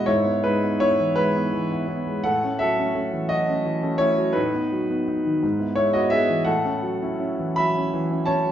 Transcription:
0.06 0.25 G#2 medium
0.06 0.23 E4 medium
0.06 0.43 C#5 medium
0.25 0.41 B3 soft
0.25 0.41 E4 soft
0.44 0.73 G#3 soft
0.44 0.78 D#4 medium
0.44 0.80 B4 medium
0.63 0.79 B3 soft
0.63 0.79 E4 soft
0.80 0.97 B3 soft
0.80 1.14 E4 medium
0.80 1.16 C#5 loud
1.00 1.27 E3 soft
1.16 1.45 G#3 soft
1.16 1.36 E4 medium
1.16 2.24 B4 medium
1.37 1.52 B3 soft
1.37 1.52 E4 medium
1.53 1.81 E3 soft
1.71 1.86 B3 soft
1.71 1.87 E4 medium
1.88 2.04 B3 soft
1.88 2.05 E4 medium
2.07 2.25 G#3 soft
2.24 2.43 A2 medium
2.24 2.58 A4 medium
2.24 2.60 F#5 medium
2.44 2.59 A3 soft
2.44 2.60 C#4 soft
2.59 2.89 F#3 soft
2.59 3.27 A4 medium
2.59 3.29 E5 medium
2.78 2.93 A3 soft
2.78 2.94 C#4 medium
2.95 3.11 A3 soft
2.95 3.11 C#4 medium
3.13 3.41 E3 soft
3.29 3.58 F#3 soft
3.29 3.97 F#4 medium
3.29 4.01 D#5 medium
3.49 3.64 A3 soft
3.49 3.64 C#4 soft
3.65 3.94 E3 medium
3.83 3.99 A3 soft
3.83 3.99 C#4 medium
3.98 4.17 A3 soft
3.98 4.18 C#4 medium
3.98 4.34 E4 medium
3.98 4.35 C#5 loud
4.18 4.36 F#3 soft
4.33 4.53 A2 medium
4.33 4.52 D#4 medium
4.33 5.76 B4 medium
4.53 4.70 B3 soft
4.53 4.70 D#4 soft
4.72 5.01 F#3 soft
4.90 5.06 B3 soft
4.90 5.06 D#4 soft
5.08 5.24 B3 soft
5.08 5.24 D#4 soft
5.25 5.43 D#3 soft
5.43 5.60 G#2 medium
5.60 5.76 B3 soft
5.60 5.75 E4 soft
5.75 6.06 G#3 medium
5.75 5.94 E4 medium
5.75 5.94 C#5 loud
5.93 6.10 B3 soft
5.93 6.11 E4 soft
5.93 6.11 F#4 medium
5.93 6.12 D#5 medium
6.10 6.28 B3 medium
6.10 6.28 E4 medium
6.10 6.44 G#4 medium
6.10 6.46 E5 loud
6.29 6.47 E3 soft
6.45 6.64 A2 medium
6.45 7.55 A4 medium
6.45 7.58 F#5 medium
6.65 6.82 C#4 soft
6.65 6.82 E4 soft
6.82 7.14 F#3 soft
7.02 7.18 C#4 soft
7.02 7.18 E4 medium
7.20 7.38 C#4 soft
7.20 7.38 E4 medium
7.38 7.69 E3 soft
7.56 7.87 F#3 soft
7.56 8.23 E5 medium
7.56 8.26 B5 loud
7.78 7.93 C#4 soft
7.78 7.93 E4 soft
7.94 8.21 E3 medium
8.11 8.26 C#4 soft
8.11 8.26 E4 soft
8.26 8.42 C#4 medium
8.26 8.43 E4 medium
8.26 8.52 C#5 medium
8.26 8.52 A5 loud
8.45 8.52 F#3 soft

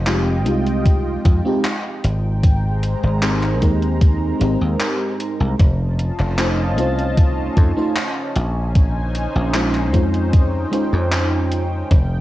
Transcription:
0.00 0.46 F1 medium
0.00 2.01 F4 medium
0.00 2.01 D#5 medium
0.00 2.01 G5 medium
0.06 0.32 G#3 medium
0.06 0.32 C4 medium
0.06 0.32 D#4 medium
0.06 0.33 F4 medium
0.06 0.33 G4 medium
0.06 clap loud
0.06 closed hi-hat medium
0.45 1.16 C2 medium
0.45 1.40 G#3 medium
0.45 1.40 C4 medium
0.45 1.41 D#4 medium
0.45 1.41 F4 medium
0.45 1.41 G4 medium
0.45 closed hi-hat medium
0.67 closed hi-hat soft
0.86 kick loud
0.86 closed hi-hat medium
1.25 1.40 F2 medium
1.25 kick loud
1.25 closed hi-hat medium
1.45 1.60 G#3 medium
1.45 1.61 C4 medium
1.45 1.61 D#4 medium
1.45 1.61 F4 medium
1.45 1.61 G4 loud
1.65 clap loud
1.65 closed hi-hat medium
2.03 2.94 G#1 loud
2.03 5.56 G#3 medium
2.03 5.55 C5 medium
2.03 3.60 G5 medium
2.03 5.56 A#5 medium
2.03 closed hi-hat medium
2.44 kick loud
2.44 closed hi-hat medium
2.83 closed hi-hat medium
3.03 3.62 G#1 medium
3.22 3.57 G#3 medium
3.22 3.57 C4 medium
3.22 3.57 D#4 medium
3.22 3.58 G4 medium
3.22 3.58 A#4 medium
3.22 clap loud
3.22 closed hi-hat medium
3.43 clap soft
3.61 4.32 D#2 medium
3.61 4.36 G#3 medium
3.61 4.36 C4 medium
3.61 4.36 D#4 medium
3.61 4.37 G4 medium
3.61 4.37 A#4 medium
3.61 kick medium
3.61 closed hi-hat medium
3.82 closed hi-hat soft
4.01 kick loud
4.01 closed hi-hat medium
4.40 4.55 G#1 loud
4.40 5.56 G#3 medium
4.40 5.57 C4 medium
4.40 5.57 D#4 medium
4.40 5.58 G4 medium
4.40 5.58 A#4 medium
4.40 closed hi-hat medium
4.61 4.75 D#2 medium
4.80 clap loud
4.80 closed hi-hat medium
5.20 closed hi-hat medium
5.40 5.54 C2 medium
5.59 6.10 F1 loud
5.59 11.87 C#4 medium
5.59 8.33 F4 medium
5.59 8.33 D#5 medium
5.59 8.33 A5 loud
5.59 kick loud
5.59 closed hi-hat medium
5.99 closed hi-hat medium
6.19 6.78 F1 medium
6.19 clap soft
6.38 6.64 A3 medium
6.38 6.64 C#4 medium
6.38 6.64 D#4 medium
6.38 6.64 F4 medium
6.38 6.64 C5 medium
6.38 clap loud
6.38 closed hi-hat medium
6.76 7.48 C2 medium
6.76 7.72 A3 medium
6.76 7.72 C#4 medium
6.76 7.72 D#4 medium
6.76 7.73 F4 medium
6.76 7.73 C5 medium
6.76 closed hi-hat medium
6.99 closed hi-hat soft
7.17 kick loud
7.17 closed hi-hat medium
7.57 7.71 F2 medium
7.57 kick loud
7.57 closed hi-hat medium
7.76 7.92 A3 medium
7.76 7.92 C#4 medium
7.76 7.92 D#4 medium
7.76 7.93 F4 medium
7.76 7.93 C5 loud
7.96 clap loud
7.96 closed hi-hat medium
8.36 9.26 A#1 loud
8.36 11.87 D#4 medium
8.36 11.88 C5 medium
8.36 9.92 G#5 loud
8.36 closed hi-hat medium
8.75 kick loud
8.75 closed hi-hat medium
9.15 closed hi-hat medium
9.35 9.94 A#1 medium
9.53 9.89 G#3 medium
9.53 9.89 C#4 medium
9.53 9.89 D#4 medium
9.53 9.89 F4 medium
9.53 9.89 C5 medium
9.53 clap loud
9.53 closed hi-hat medium
9.74 clap soft
9.93 10.64 F2 medium
9.93 10.68 G#3 medium
9.93 10.68 C#4 medium
9.93 10.68 D#4 medium
9.93 10.68 F4 medium
9.93 10.68 C5 loud
9.93 12.21 G5 medium
9.93 kick medium
9.93 closed hi-hat medium
10.14 closed hi-hat soft
10.33 kick loud
10.33 closed hi-hat medium
10.71 11.88 G#3 medium
10.71 11.88 C#4 medium
10.71 11.89 D#4 medium
10.71 11.89 F4 medium
10.71 11.89 C5 medium
10.71 closed hi-hat medium
10.93 11.82 F2 loud
11.12 clap loud
11.12 closed hi-hat medium
11.52 closed hi-hat medium
11.91 12.21 F1 loud
11.91 12.21 F4 medium
11.91 12.21 D#5 medium
11.91 kick loud
11.91 closed hi-hat medium

